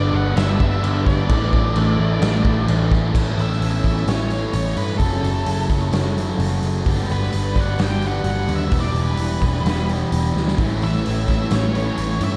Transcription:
Already playing: picked electric bass G1, overdriven electric guitar G2 D3 G3 B3 D4, distorted electric guitar G2 D3 G3 D4, analog synth pad G3 B3 D4 B4 D5, lead electric guitar D5
0.12 picked electric bass G1, distorted electric guitar D3 G3, lead electric guitar F#5
0.35 picked electric bass G1, overdriven electric guitar G2 D3 G3 B3 D4, lead electric guitar E5, snare, crash
0.59 picked electric bass G1, distorted electric guitar D3 G3, overdriven electric guitar B3 D4, kick
0.63 overdriven electric guitar G3
0.82 picked electric bass G1, distorted electric guitar G2 D3 G3, overdriven electric guitar D3 G3 B3, crash
0.86 overdriven electric guitar D4
1.06 picked electric bass G1, lead electric guitar D5, kick, snare
1.27 picked electric bass A1, distorted electric guitar A2 E3 A3, overdriven electric guitar A2 D3 E3 A3, kick, crash
1.31 analog synth pad E3 A3 A4, overdriven electric guitar A3 D4
1.51 picked electric bass A1, distorted electric guitar E3 A3, kick
1.74 picked electric bass A1, distorted electric guitar A2 E3 A3, overdriven electric guitar D3 E3 A3 D4, crash
1.97 picked electric bass A1, distorted electric guitar E3 A3
2.21 picked electric bass A1, overdriven electric guitar A2 D3 E3 A3 D4, snare, crash
2.44 picked electric bass A1, distorted electric guitar E3 A3, overdriven electric guitar E3 A3 D4, kick
2.67 picked electric bass A1, distorted electric guitar A2 E3 A3, overdriven electric guitar D3 E3 A3 D4, crash
2.91 kick, snare
3.13 picked electric bass A1, overdriven electric guitar A2 E3 A3 C#4 E4, distorted electric guitar A2 E3 A3, analog synth pad E3 B3 C#4 A4 C#5, kick, crash
3.38 picked electric bass A1, lead electric guitar E5, open hi-hat
3.52 snare
3.60 picked electric bass A1, distorted electric guitar A2 E3 A3, open hi-hat
3.83 picked electric bass A1, overdriven electric guitar A2 E3 A3 C#4 E4, lead electric guitar E5, kick, open hi-hat
4.06 picked electric bass A1, lead electric guitar C#5, snare, open hi-hat
4.29 distorted electric guitar E3 A3, open hi-hat
4.53 picked electric bass A1, distorted electric guitar A2 E3 A3, lead electric guitar C#5, open hi-hat
4.76 picked electric bass G2, distorted electric guitar E3 A3, lead electric guitar B4, open hi-hat
4.98 picked electric bass F#1, distorted electric guitar F#2 C#3 F#3, overdriven electric guitar F#2 C#3 F#3 A3, lead electric guitar A4, kick, open hi-hat
5.02 analog synth pad F#3 E4 A4, overdriven electric guitar C#4
5.23 picked electric bass F#1, open hi-hat
5.45 picked electric bass F#1, distorted electric guitar F#2 C#3 F#3, open hi-hat
5.69 picked electric bass F#1, overdriven electric guitar F#2 C#3 F#3 A3 C#4, kick, open hi-hat
5.93 picked electric bass F#1, snare, open hi-hat
6.16 distorted electric guitar C#3 F#3, open hi-hat
6.39 picked electric bass F#1, distorted electric guitar F#2 C#3 F#3, open hi-hat
6.62 picked electric bass F#1, distorted electric guitar C#3 F#3, open hi-hat
6.85 picked electric bass G1, distorted electric guitar G2 D3 G3, overdriven electric guitar G2 D3 G3 B3, analog synth pad G3 D4 D5, kick, open hi-hat
6.89 overdriven electric guitar D4, analog synth pad F#4 B4
7.10 picked electric bass G1, lead electric guitar B4, open hi-hat
7.23 snare
7.30 picked electric bass G1, distorted electric guitar G2 D3 G3, open hi-hat
7.56 picked electric bass G1, overdriven electric guitar D3 G3 B3 D4, kick, open hi-hat
7.60 overdriven electric guitar G2, lead electric guitar F#5
7.79 picked electric bass G1, snare, open hi-hat
7.84 lead electric guitar G5
8.01 distorted electric guitar D3 G3, open hi-hat
8.07 lead electric guitar F#5
8.24 picked electric bass G1, distorted electric guitar G2 D3 G3, open hi-hat
8.30 lead electric guitar F#5
8.48 picked electric bass D#2, distorted electric guitar D3 G3, open hi-hat
8.56 lead electric guitar E5
8.70 picked electric bass E1, distorted electric guitar E2 B2 E3, overdriven electric guitar E3 G3 B3 E4, analog synth pad E4, kick, open hi-hat
8.80 lead electric guitar D5
8.93 picked electric bass E1, open hi-hat
9.03 lead electric guitar B4
9.17 picked electric bass E1, distorted electric guitar E2 B2 E3, open hi-hat
9.41 picked electric bass E1, overdriven electric guitar G3 B3 E4, kick, open hi-hat
9.46 overdriven electric guitar E3
9.64 picked electric bass E1, snare, open hi-hat
9.86 distorted electric guitar B2 E3, open hi-hat
10.11 picked electric bass E1, distorted electric guitar E2 B2 E3, open hi-hat
10.34 picked electric bass D2, distorted electric guitar B2 E3, snare
10.48 snare
10.57 picked electric bass A1, overdriven electric guitar A2 E3 A3, distorted electric guitar A2 E3 A3, analog synth pad A3 C#4 C#5, kick, open hi-hat
10.61 overdriven electric guitar C#4 E4
10.80 picked electric bass A1, overdriven electric guitar A2 E3 A3, lead electric guitar E5, open hi-hat
10.94 snare
11.03 distorted electric guitar A2 E3 A3, overdriven electric guitar A2 E3 A3, open hi-hat
11.08 picked electric bass A1
11.27 picked electric bass A1, overdriven electric guitar A2 E3 A3 C#4 E4, lead electric guitar E5, kick, open hi-hat
11.50 picked electric bass A1, overdriven electric guitar A2 E3 A3, lead electric guitar C#5, snare, open hi-hat
11.73 overdriven electric guitar A2 E3 A3, distorted electric guitar A3, open hi-hat
11.77 distorted electric guitar E3
11.95 picked electric bass A1, overdriven electric guitar A2 E3 A3, distorted electric guitar A2 E3 A3, open hi-hat
12.18 picked electric bass G2, overdriven electric guitar A2 E3 A3, distorted electric guitar E3 A3, open hi-hat
12.24 lead electric guitar E5

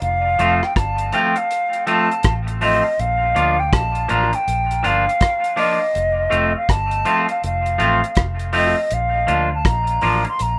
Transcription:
0.02 fingered electric bass F1, flute F5, closed hi-hat
0.39 fingered electric bass F1, clean electric guitar F3 A3 C4 F4, closed hi-hat
0.63 flute G5, cross-stick
0.76 fingered electric bass G1, flute A5, kick, cross-stick, closed hi-hat
0.98 closed hi-hat
1.12 clean electric guitar F3 A3 C4 F4, flute G5, closed hi-hat
1.36 flute F5, muted clean electric guitar stroke, closed hi-hat
1.51 closed hi-hat
1.73 closed hi-hat
1.87 clean electric guitar F3 A3 C4 F4, flute A5, closed hi-hat
2.11 closed hi-hat
2.23 fingered electric bass A1, kick, cross-stick, closed hi-hat
2.47 muted clean electric guitar stroke, closed hi-hat
2.61 clean electric guitar F3 A3 C4 F4, flute D#5, open hi-hat
2.99 fingered electric bass A#1, flute F5, closed hi-hat
3.35 fingered electric bass D2, clean electric guitar F3 A#3 D4 F4, closed hi-hat
3.60 flute G5
3.73 fingered electric bass A#1, flute A5, kick, cross-stick, closed hi-hat
3.95 closed hi-hat
4.08 fingered electric bass A1, clean electric guitar F3 A#3 D4 F4, flute A#5, closed hi-hat
4.33 flute G5, muted clean electric guitar stroke, closed hi-hat
4.48 fingered electric bass A#1, closed hi-hat
4.71 closed hi-hat
4.83 fingered electric bass G1, clean electric guitar F3 A#3 D4 F4, flute F5, closed hi-hat
5.09 closed hi-hat
5.21 kick, cross-stick, closed hi-hat
5.44 closed hi-hat
5.56 clean electric guitar F3 A#3 D4 F4, flute D#5, open hi-hat
5.95 fingered electric bass F1, closed hi-hat
6.30 fingered electric bass F1, clean electric guitar F3 A3 C4 F4, closed hi-hat
6.57 flute F5
6.69 fingered electric bass G1, flute A5, kick, cross-stick, closed hi-hat
6.91 closed hi-hat
7.05 clean electric guitar F3 A3 C4 F4, closed hi-hat
7.28 flute F5, muted clean electric guitar stroke, closed hi-hat
7.44 fingered electric bass F1, flute F5, closed hi-hat
7.66 closed hi-hat
7.78 fingered electric bass A1, clean electric guitar F3 A3 C4 F4, closed hi-hat
8.04 closed hi-hat
8.15 fingered electric bass F1, kick, cross-stick, closed hi-hat
8.39 closed hi-hat
8.53 clean electric guitar F3 A3 C4 F4, flute D#5, open hi-hat
8.91 fingered electric bass A#1, flute F5, closed hi-hat
9.27 fingered electric bass D2, clean electric guitar F3 A#3 D4 F4, closed hi-hat
9.54 flute A5
9.65 fingered electric bass A#1, flute A#5, kick, cross-stick, closed hi-hat
9.87 closed hi-hat
10.01 fingered electric bass A1, clean electric guitar F3 A#3 D4 F4, open hi-hat
10.25 flute C6, muted clean electric guitar stroke, closed hi-hat
10.39 fingered electric bass A#1, flute A#5, closed hi-hat

